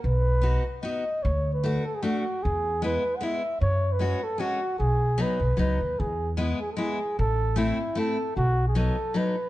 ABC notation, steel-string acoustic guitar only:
X:1
M:3/4
L:1/8
Q:"Swing" 1/4=152
K:E
V:1 name="Steel-string acoustic guitar"
z2 [B,DF] z [B,DF] z | z2 [A,=DF] z [A,DF] z | z2 [G,B,E] z [G,B,E] z | z2 [G,CF] z [G,CF] z |
z2 [F,B,D] z [F,B,D] z | z2 [G,B,E] z [G,B,E] z | z2 [A,=CE] z [A,CE] z | z2 [F,B,D] z [F,B,D] z |]